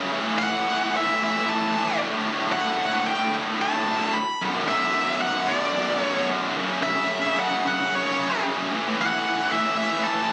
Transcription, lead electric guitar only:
0.38 0.94 F#5 loud
0.97 1.22 E5 medium
1.24 1.49 E5 loud
1.49 1.98 A5 loud
2.52 3.07 F#5 loud
3.07 3.32 G5 loud
3.62 4.14 A5 loud
4.14 4.40 B5 loud
4.69 5.19 E5 loud
5.22 5.50 F#5 loud
5.48 6.01 D5 medium
6.01 6.26 C#5 medium
6.83 7.39 E5 loud
7.40 7.66 F#5 medium
7.68 7.94 F#5 loud
7.95 8.43 C#5 medium
9.01 9.51 F#5 medium
9.52 9.76 E5 medium
9.78 10.06 E5 loud
10.04 10.33 A5 loud

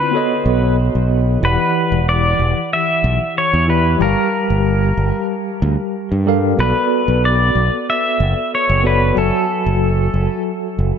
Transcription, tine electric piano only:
0.00 0.11 D3 medium
0.00 0.11 C4 medium
0.00 0.12 E4 medium
0.00 0.13 F4 medium
0.00 0.14 D5 medium
0.11 1.09 B3 medium
0.11 1.10 F#4 medium
0.11 1.11 A4 medium
0.11 1.11 C#5 medium
0.17 1.12 D#5 medium
1.40 3.64 E3 medium
1.40 3.65 E4 medium
1.40 3.65 G4 medium
1.44 3.66 D5 medium
1.44 3.66 F#5 medium
3.67 3.97 E3 medium
3.67 3.97 E4 medium
3.67 3.97 G4 medium
3.67 3.98 D5 medium
3.67 3.98 E5 medium
3.99 6.22 G3 medium
3.99 6.23 G4 medium
3.99 6.24 A#4 medium
3.99 6.23 A5 medium
4.04 6.25 F5 medium
6.26 6.50 G3 medium
6.26 6.51 G4 medium
6.26 6.51 A4 medium
6.26 6.51 A#4 medium
6.26 6.52 F5 medium
6.57 8.80 B3 medium
6.57 8.81 F#4 medium
6.57 8.82 A4 medium
6.57 8.82 B4 medium
6.62 8.83 D5 medium
8.84 9.13 B3 medium
8.84 9.13 F#4 medium
8.84 9.13 A4 medium
8.84 9.14 C#5 medium
8.84 9.14 D5 medium
9.15 10.98 F#3 medium
9.15 10.98 F#4 medium
9.15 10.98 A4 medium
9.15 10.98 G#5 medium
9.20 10.98 E5 medium

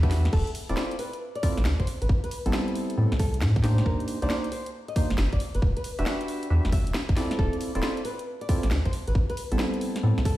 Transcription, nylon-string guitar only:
0.33 0.50 A4 loud
0.69 0.81 C5 medium
0.99 1.16 B4 medium
1.36 1.54 D5 loud
1.80 1.86 C5 medium
2.02 2.08 B4 medium
2.24 2.36 B4 loud
3.20 3.36 A4 medium
3.86 4.03 A#4 loud
4.22 4.34 D5 loud
4.52 4.69 C5 medium
4.88 5.07 D#5 medium
5.33 5.39 D5 medium
5.55 5.61 B4 medium
5.77 5.89 B4 medium
6.73 6.89 E5 loud
7.39 7.56 A4 loud
7.75 7.87 C5 loud
8.05 8.22 B4 medium
8.41 8.60 D5 medium
8.86 8.92 C5 medium
9.08 9.14 B4 medium
9.30 9.42 B4 loud
10.25 10.37 A4 medium

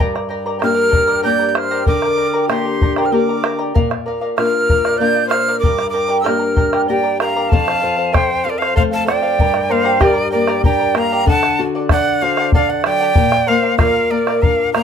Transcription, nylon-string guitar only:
0.00 1.83 G2 medium
0.62 1.23 A#3 soft
0.62 1.23 D4 soft
0.62 1.23 G4 medium
1.25 1.85 A#3 soft
1.25 1.85 D4 soft
1.25 1.86 G4 medium
1.88 3.71 D3 medium
2.49 3.10 A#3 soft
2.49 3.10 D4 soft
2.49 3.10 G4 medium
3.12 3.73 A#3 soft
3.12 3.73 D4 soft
3.12 3.73 G4 soft
3.75 5.59 A#2 medium
4.38 4.98 A#3 soft
4.38 4.99 D4 soft
4.38 4.99 F4 medium
5.00 5.61 A#3 soft
5.00 5.62 D4 soft
5.00 5.61 F4 medium
5.65 7.48 G2 medium
6.26 6.87 A#3 soft
6.26 6.87 D4 soft
6.26 6.87 G4 medium
6.89 7.50 A#3 soft
6.89 7.50 D4 soft
6.89 7.50 G4 soft
7.53 9.36 F2 medium
7.83 8.13 F3 medium
8.14 8.44 C4 medium
8.45 8.75 F3 medium
8.78 9.08 A3 medium
9.07 9.38 F3 medium
9.40 11.24 G2 medium
9.71 10.01 A#3 medium
10.00 10.32 G4 medium
10.34 10.64 A#3 medium
10.65 10.95 D4 medium
10.95 11.26 A#3 medium
11.26 13.11 D3 medium
11.59 11.90 F#4 medium
11.91 12.21 D5 medium
12.22 12.52 F#4 medium
12.56 12.85 A4 medium
12.86 13.16 F#3 medium
13.18 14.83 A#2 medium
13.49 13.79 A#3 medium
13.78 14.09 F4 medium
14.11 14.41 A#3 medium
14.43 14.73 D4 medium
14.76 14.83 A#3 medium

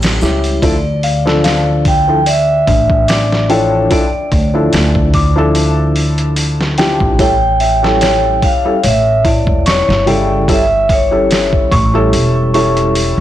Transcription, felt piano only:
0.00 0.17 G3 loud
0.00 0.17 C#4 medium
0.00 0.17 E4 medium
0.00 0.18 A4 loud
0.21 0.58 G3 medium
0.21 0.58 C#4 medium
0.21 0.58 E4 medium
0.21 0.58 G4 medium
0.63 0.74 F3 medium
0.63 0.74 D4 medium
0.63 0.74 E4 medium
0.63 0.74 A4 loud
1.26 2.02 F3 medium
1.26 2.02 D4 medium
1.26 2.03 A4 medium
2.08 2.17 F3 medium
2.08 2.18 D4 medium
2.08 2.18 E4 medium
2.08 2.18 A4 medium
3.49 3.86 F3 medium
3.49 3.86 D4 medium
3.49 3.87 E4 medium
3.49 3.87 A4 loud
3.90 4.02 F3 loud
3.90 4.02 D4 medium
3.90 4.03 E4 medium
3.90 4.03 A4 loud
4.54 5.31 F3 medium
4.54 5.31 D4 medium
4.54 5.31 E4 medium
4.54 5.31 A4 medium
5.36 6.74 F3 medium
5.36 6.75 D4 medium
5.36 6.75 E4 medium
5.36 6.76 A4 loud
6.78 7.15 F3 medium
6.78 7.15 D4 medium
6.78 7.15 E4 medium
6.78 7.16 G4 medium
7.19 7.31 G3 loud
7.19 7.31 C#4 medium
7.19 7.31 E4 medium
7.19 7.32 A4 loud
7.83 8.60 G3 medium
7.83 8.60 C#4 medium
7.83 8.60 E4 medium
7.83 8.60 A4 loud
8.65 8.75 G3 medium
8.65 8.75 C#4 medium
8.65 8.75 E4 medium
8.65 8.75 A4 medium
10.06 10.44 C#3 medium
10.06 10.43 G3 medium
10.06 10.44 E4 medium
10.06 10.44 A4 loud
10.48 10.60 G3 loud
10.48 10.60 C#4 medium
10.48 10.60 E4 medium
10.48 10.60 A4 loud
11.11 11.88 G3 medium
11.11 11.88 C#4 medium
11.11 11.89 E4 medium
11.11 11.89 A4 medium
11.94 12.50 G3 medium
11.94 12.50 C#4 medium
11.94 12.50 E4 medium
11.94 12.51 A4 loud
12.54 13.20 G3 medium
12.54 13.20 C#4 medium
12.54 13.20 E4 medium
12.54 13.20 A4 loud

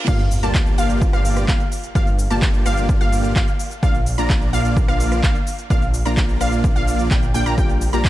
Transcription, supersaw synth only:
0.08 0.20 A#3 loud
0.08 0.20 F4 medium
0.08 0.20 G4 medium
0.08 0.20 D5 medium
0.08 0.20 F5 loud
0.43 0.75 A#3 medium
0.43 0.75 F4 medium
0.43 0.75 G4 medium
0.43 0.75 D5 medium
0.43 0.75 A5 medium
0.78 1.10 A#3 medium
0.78 1.10 F4 medium
0.78 1.10 G4 medium
0.78 1.10 D5 medium
0.78 1.10 F5 loud
1.13 1.46 A#3 medium
1.13 1.46 F4 loud
1.13 1.46 G4 medium
1.13 1.46 D5 medium
1.13 1.46 F5 loud
1.48 1.61 A#3 medium
1.95 2.08 A#3 loud
1.95 2.08 F4 medium
1.95 2.08 G4 medium
1.95 2.08 D5 medium
1.95 2.08 F5 loud
2.30 2.63 A#3 medium
2.30 2.63 F4 medium
2.30 2.63 G4 medium
2.30 2.63 D5 medium
2.30 2.63 A5 medium
2.66 2.98 A#3 medium
2.66 2.98 F4 medium
2.66 2.98 G4 medium
2.66 2.98 D5 medium
2.66 2.98 F5 loud
3.01 3.33 A#3 loud
3.01 3.33 F4 loud
3.01 3.33 G4 medium
3.01 3.33 D5 medium
3.01 3.33 F5 loud
3.36 3.48 A#3 loud
3.36 3.48 F4 medium
3.36 3.48 G4 medium
3.36 3.48 D5 medium
3.36 3.48 F5 loud
3.83 3.95 A#3 loud
3.83 3.95 D4 medium
3.83 3.95 F4 medium
3.83 3.95 D5 medium
3.83 3.95 F5 loud
4.18 4.50 A#3 medium
4.18 4.50 D4 medium
4.18 4.50 F4 medium
4.18 4.50 D5 medium
4.18 4.50 A#5 medium
4.53 4.85 A#3 loud
4.53 4.85 D4 medium
4.53 4.85 F4 medium
4.53 4.85 D5 medium
4.53 4.85 F5 loud
4.88 5.21 A#3 loud
4.88 5.21 D4 medium
4.88 5.21 F4 medium
4.88 5.21 D5 medium
4.88 5.21 F5 loud
5.23 5.36 A#3 medium
5.23 5.36 D4 medium
5.23 5.36 F4 medium
5.23 5.36 D5 medium
5.23 5.36 F5 loud
5.70 5.83 A#3 loud
5.70 5.83 D4 medium
5.70 5.83 F4 medium
5.70 5.83 D5 medium
5.70 5.83 F5 loud
6.05 6.38 A#3 medium
6.05 6.38 D4 medium
6.05 6.38 F4 medium
6.05 6.38 D5 medium
6.05 6.38 A#5 medium
6.41 6.73 A#3 medium
6.41 6.73 D4 medium
6.41 6.73 F4 medium
6.41 6.73 D5 medium
6.41 6.73 F5 loud
6.76 7.08 A#3 loud
6.76 7.08 D4 medium
6.76 7.08 F4 medium
6.76 7.08 D5 medium
6.76 7.08 F5 loud
7.11 7.23 A#3 medium
7.11 7.23 D4 medium
7.11 7.23 F4 medium
7.11 7.23 D5 medium
7.11 7.23 G5 medium
7.34 7.44 A#3 loud
7.34 7.44 D4 medium
7.34 7.44 F4 medium
7.34 7.44 D5 medium
7.34 7.44 G5 loud
7.46 7.55 A#3 medium
7.46 7.55 D4 medium
7.46 7.55 F4 medium
7.46 7.55 D5 medium
7.46 7.55 A#5 medium
7.58 7.70 A#3 loud
7.58 7.70 F4 medium
7.58 7.70 G4 medium
7.58 7.70 D5 medium
7.58 7.70 G5 loud
7.93 8.09 A#3 medium
7.93 8.09 F4 medium
7.93 8.09 G4 medium
7.93 8.09 D5 medium
7.93 8.09 A#5 medium

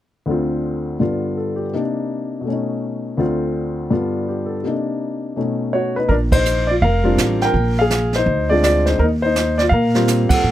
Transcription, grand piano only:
0.26 0.99 D2 soft
0.26 0.98 D3 soft
0.26 1.01 C4 soft
0.30 1.00 F4 soft
1.00 1.73 G2 soft
1.00 1.73 D3 soft
1.00 1.73 B3 soft
1.00 1.74 F4 soft
1.37 1.65 A4 soft
1.56 1.81 G4 soft
1.74 2.46 C3 soft
1.74 2.46 A#3 soft
1.74 2.47 D4 soft
1.74 2.47 D#4 soft
2.41 3.16 B2 soft
2.41 3.18 A3 soft
2.48 3.20 C#4 soft
2.53 3.22 D#4 soft
3.17 3.91 D2 soft
3.17 3.89 D3 soft
3.17 3.91 C4 soft
3.17 3.90 F4 medium
3.91 4.64 G2 soft
3.91 4.64 D3 soft
3.91 4.64 B3 soft
3.91 4.64 F4 soft
4.28 4.56 G4 soft
4.46 4.71 A4 soft
4.63 5.36 C3 soft
4.63 5.37 A#3 soft
4.63 5.38 D4 soft
4.68 5.36 D#4 soft
5.36 6.09 B2 soft
5.36 6.09 A3 soft
5.36 6.10 C#4 soft
5.36 5.97 D#4 soft
5.73 5.95 F#4 medium
5.73 5.97 C#5 medium
5.96 6.10 D#4 soft
5.96 6.08 B4 medium
6.09 6.16 D4 medium
6.09 6.14 A#4 medium
6.32 6.68 D#4 medium
6.32 6.66 C5 loud
6.67 6.72 D5 medium
6.71 6.76 F4 medium
6.82 7.38 A#4 medium
6.82 7.43 F5 medium
7.04 7.51 G3 medium
7.04 7.51 C4 medium
7.04 7.52 D4 medium
7.04 7.52 F4 medium
7.42 7.77 A#4 medium
7.42 7.79 G5 medium
7.79 8.13 G#4 medium
7.79 8.15 F5 medium
8.16 8.50 D#4 medium
8.16 8.48 C5 medium
8.49 8.97 G#3 medium
8.49 8.97 C4 medium
8.49 8.97 D4 medium
8.49 8.65 F4 medium
8.49 8.62 D5 medium
8.63 8.86 F4 medium
8.63 8.84 D5 medium
8.86 9.00 D#4 medium
8.86 9.00 C5 medium
8.99 9.04 A#4 medium
9.04 9.09 D#4 medium
9.22 9.58 D#4 medium
9.22 9.59 C5 medium
9.58 9.67 F4 medium
9.58 9.63 D5 medium
9.69 10.28 A#4 medium
9.69 10.26 F5 medium
9.95 10.42 G3 medium
9.95 10.42 A#3 medium
9.95 10.42 C4 medium
9.95 10.42 F4 medium
10.29 10.51 F#5 medium
10.34 10.51 A4 medium

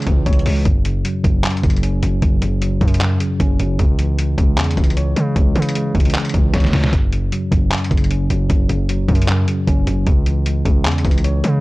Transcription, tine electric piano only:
0.00 0.68 C#3 medium
0.00 0.07 E3 medium
0.00 0.46 G#3 medium
0.00 0.26 C#5 medium
0.07 0.65 E3 medium
0.26 0.65 C#5 medium
0.46 0.66 G#3 medium
0.66 1.22 F#2 medium
0.85 1.62 C#3 medium
1.05 2.02 F#3 medium
1.24 1.43 F#2 medium
1.44 2.21 F#2 medium
1.63 2.41 C#3 medium
1.83 2.81 C#4 loud
2.03 2.60 F#3 medium
2.22 2.79 F#2 medium
2.42 3.19 C#3 medium
2.61 3.58 F#3 medium
2.80 2.99 F#2 medium
3.01 3.79 F#2 medium
3.20 3.78 C#3 medium
3.40 3.79 C#4 loud
3.60 3.79 F#3 medium
3.79 4.37 C#3 medium
3.98 4.76 E3 medium
4.18 5.15 G#3 medium
4.38 4.56 C#3 medium
4.57 5.35 C#3 medium
4.77 5.54 E3 medium
4.97 5.95 C#5 medium
5.16 5.74 G#3 medium
5.36 5.94 C#3 medium
5.55 6.33 E3 medium
5.75 6.72 G#3 medium
5.95 6.14 C#3 medium
6.15 6.93 C#3 medium
6.34 6.93 E3 medium
6.54 6.93 C#5 medium
6.73 6.93 G#3 medium
6.93 7.50 F#2 medium
7.13 7.90 C#3 medium
7.32 8.29 F#3 medium
7.51 7.70 F#2 medium
7.71 8.49 F#2 medium
7.91 8.68 C#3 medium
8.10 9.09 C#4 medium
8.30 8.88 F#3 medium
8.50 9.07 F#2 medium
8.70 9.46 C#3 medium
8.89 9.86 F#3 medium
9.08 9.27 F#2 medium
9.28 10.07 F#2 medium
9.48 10.06 C#3 medium
9.68 10.07 C#4 loud
9.87 10.07 F#3 medium
10.07 10.64 C#3 medium
10.26 11.03 E3 medium
10.45 11.42 G#3 medium
10.66 10.84 C#3 medium
10.85 11.61 C#3 medium
11.05 11.61 E3 medium
11.24 11.61 C#5 loud
11.44 11.61 G#3 medium

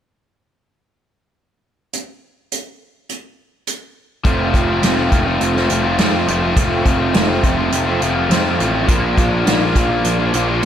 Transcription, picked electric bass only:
4.25 4.50 F1 medium
4.54 4.80 F1 medium
4.83 5.09 F1 medium
5.12 5.38 F1 medium
5.41 5.67 F1 medium
5.70 5.96 F1 medium
5.98 6.24 F2 medium
6.28 6.54 F1 medium
6.57 6.82 F1 medium
6.86 7.11 F1 medium
7.14 7.40 F1 medium
7.43 7.69 F1 medium
7.72 7.98 F1 medium
8.01 8.27 F1 medium
8.29 8.56 F2 medium
8.59 8.85 A1 medium
8.88 9.14 A#1 medium
9.18 9.43 A#1 medium
9.46 9.72 A#1 medium
9.75 10.01 A#1 medium
10.05 10.30 A#1 medium
10.34 10.59 A#1 medium

